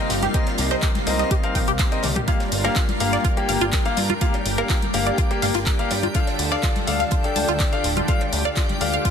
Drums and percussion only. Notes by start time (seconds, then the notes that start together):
0.10 snare, closed hi-hat, open hi-hat
0.22 snare, closed hi-hat, high conga
0.34 kick, closed hi-hat
0.47 snare, closed hi-hat, cowbell
0.58 snare, closed hi-hat, open hi-hat
0.71 snare, closed hi-hat, cowbell, high woodblock
0.82 kick, clap, closed hi-hat
0.95 snare, closed hi-hat, high conga
1.07 closed hi-hat, open hi-hat, high woodblock
1.19 snare, closed hi-hat
1.31 kick, closed hi-hat
1.44 closed hi-hat, high woodblock
1.55 kick, closed hi-hat, open hi-hat, high conga
1.67 closed hi-hat
1.79 kick, snare, clap, closed hi-hat
1.92 closed hi-hat
2.03 closed hi-hat, open hi-hat, high tom, cowbell
2.16 closed hi-hat, mid tom, high conga
2.28 kick, closed hi-hat
2.40 snare, closed hi-hat, cowbell
2.52 closed hi-hat, open hi-hat
2.64 snare, closed hi-hat, cowbell, high woodblock
2.76 kick, snare, clap, closed hi-hat
2.88 snare, closed hi-hat, high conga
3.00 closed hi-hat, open hi-hat
3.13 snare, closed hi-hat
3.25 kick, closed hi-hat
3.37 closed hi-hat
3.49 closed hi-hat, open hi-hat, high conga
3.61 closed hi-hat
3.73 kick, snare, clap, closed hi-hat
3.85 closed hi-hat
3.97 closed hi-hat, open hi-hat
4.09 closed hi-hat, high conga
4.21 kick, closed hi-hat
4.34 closed hi-hat, cowbell
4.45 closed hi-hat, open hi-hat
4.58 closed hi-hat, cowbell, high woodblock
4.69 kick, snare, clap, closed hi-hat
4.82 closed hi-hat, high conga
4.93 closed hi-hat, open hi-hat
5.07 closed hi-hat
5.18 kick, closed hi-hat
5.31 closed hi-hat
5.42 snare, closed hi-hat, open hi-hat, high conga
5.54 snare, closed hi-hat
5.66 kick, snare, clap, closed hi-hat
5.79 closed hi-hat
5.91 closed hi-hat, open hi-hat, cowbell
6.03 closed hi-hat, high conga
6.14 kick, closed hi-hat
6.27 snare, closed hi-hat, cowbell
6.39 closed hi-hat, open hi-hat
6.51 snare, closed hi-hat, cowbell, high woodblock
6.63 kick, snare, clap, closed hi-hat
6.76 snare, closed hi-hat, high conga
6.87 closed hi-hat, open hi-hat
7.00 snare, closed hi-hat
7.11 kick, closed hi-hat
7.24 closed hi-hat
7.36 closed hi-hat, open hi-hat, high conga
7.48 closed hi-hat
7.60 kick, snare, clap, closed hi-hat
7.73 closed hi-hat
7.84 closed hi-hat, open hi-hat
7.97 closed hi-hat, high conga
8.08 kick, closed hi-hat
8.21 closed hi-hat, cowbell
8.33 closed hi-hat, open hi-hat
8.45 closed hi-hat, cowbell, high woodblock
8.56 kick, snare, clap, closed hi-hat
8.69 closed hi-hat, high conga
8.81 closed hi-hat, open hi-hat
8.94 closed hi-hat
9.05 kick, closed hi-hat